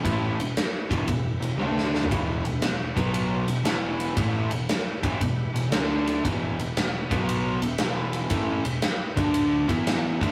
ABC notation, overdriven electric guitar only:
X:1
M:4/4
L:1/8
Q:"Swing" 1/4=116
K:Em
V:1 name="Overdriven electric guitar" clef=bass
[A,,E,A,] [E,,B,,] z [E,,B,,E,] [E,,B,,] [E,,B,,] [D,A,D]2 | [E,,B,,E,] [E,,B,,] [E,,B,,] [B,,F,B,]2 [E,,B,,] [E,,B,,E,]2 | [A,,E,A,] [E,,B,,] z [E,,B,,E,] [E,,B,,] [E,,B,,] [D,A,D]2 | [E,,B,,E,] [E,,B,,] [E,,B,,] [B,,F,B,]2 [E,,B,,] [E,,B,,E,]2 |
[A,,E,A,] [E,,B,,] z [D,A,D]2 [E,B,E]2 [D,A,D] |]